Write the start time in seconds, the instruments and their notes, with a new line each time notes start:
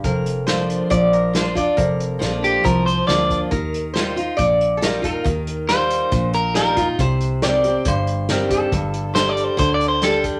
0.04 fingered electric bass F1, steel-string acoustic guitar F2, resonator guitar played with a steel bar A#4, kick, closed hi-hat
0.26 closed hi-hat
0.46 steel-string acoustic guitar F3 A#3 D4 F4, resonator guitar played with a steel bar C5, snare, closed hi-hat
0.70 closed hi-hat
0.90 fingered electric bass A#1, steel-string acoustic guitar F3, resonator guitar played with a steel bar D5, kick, closed hi-hat
1.13 resonator guitar played with a steel bar A#4, closed hi-hat
1.33 steel-string acoustic guitar F3 A#3 D4 F4, resonator guitar played with a steel bar C5, snare, closed hi-hat
1.55 steel-string acoustic guitar D4 F4, resonator guitar played with a steel bar D5, kick, closed hi-hat
1.77 fingered electric bass F1, steel-string acoustic guitar F2, resonator guitar played with a steel bar A#4, kick, closed hi-hat
2.00 closed hi-hat
2.19 fingered electric bass A#1, steel-string acoustic guitar F3 A#3 D4 F4, snare, closed hi-hat
2.44 clean electric guitar G4, closed hi-hat
2.64 fingered electric bass C2, steel-string acoustic guitar F3, clean electric guitar A#4, kick, closed hi-hat
2.86 clean electric guitar C5, closed hi-hat
3.07 fingered electric bass D2, steel-string acoustic guitar F3 A#3 D4 F4, clean electric guitar D5, snare, closed hi-hat
3.30 kick, closed hi-hat
3.51 fingered electric bass D#2, steel-string acoustic guitar D#3, resonator guitar played with a steel bar A#4, kick, closed hi-hat
3.74 closed hi-hat
3.94 steel-string acoustic guitar D#3 G3 D#4, resonator guitar played with a steel bar C5, snare, closed hi-hat
3.98 steel-string acoustic guitar F4
4.16 steel-string acoustic guitar D#4 F4, closed hi-hat
4.37 fingered electric bass A#1, steel-string acoustic guitar A#2, resonator guitar played with a steel bar D5, kick, closed hi-hat
4.61 closed hi-hat
4.77 steel-string acoustic guitar D#3, resonator guitar played with a steel bar A4
4.82 steel-string acoustic guitar G3 D#4 F4, resonator guitar played with a steel bar A#4, snare, closed hi-hat
5.02 steel-string acoustic guitar D#4 F4, resonator guitar played with a steel bar A#4, kick, closed hi-hat
5.24 fingered electric bass D#2, steel-string acoustic guitar D#3, kick, closed hi-hat
5.47 closed hi-hat
5.69 steel-string acoustic guitar D#3 G3 D#4 F4, clean electric guitar C5, snare, closed hi-hat
5.90 closed hi-hat
6.12 fingered electric bass A#1, steel-string acoustic guitar A#2, resonator guitar played with a steel bar A4, kick, closed hi-hat
6.33 clean electric guitar A#4, closed hi-hat
6.55 steel-string acoustic guitar D#3 G3 D#4 F4, clean electric guitar A#4, snare, closed hi-hat
6.77 steel-string acoustic guitar D#4 F4, kick, closed hi-hat
6.99 fingered electric bass C2, steel-string acoustic guitar C3, resonator guitar played with a steel bar C5, kick, closed hi-hat
7.21 closed hi-hat
7.42 steel-string acoustic guitar D#3 G3 C4 G4, resonator guitar played with a steel bar D5, snare, closed hi-hat
7.64 steel-string acoustic guitar C4 G4, closed hi-hat
7.85 fingered electric bass G1, steel-string acoustic guitar G2, resonator guitar played with a steel bar C5, kick, closed hi-hat
8.07 closed hi-hat
8.29 steel-string acoustic guitar D#3 G3 C4 G4, resonator guitar played with a steel bar A#4, snare, closed hi-hat
8.51 resonator guitar played with a steel bar A4, kick, closed hi-hat
8.72 fingered electric bass G1, steel-string acoustic guitar G2, kick, closed hi-hat
8.94 closed hi-hat
9.14 steel-string acoustic guitar D3 G3 D4 G4, clean electric guitar C5, snare, closed hi-hat
9.29 clean electric guitar D5
9.37 closed hi-hat
9.44 clean electric guitar C5
9.57 fingered electric bass D2, steel-string acoustic guitar D3, clean electric guitar C5, kick, closed hi-hat
9.74 clean electric guitar D5
9.81 closed hi-hat
9.88 clean electric guitar C5
10.01 steel-string acoustic guitar D3 G3 D4 G4, clean electric guitar A4, snare, closed hi-hat
10.24 kick, closed hi-hat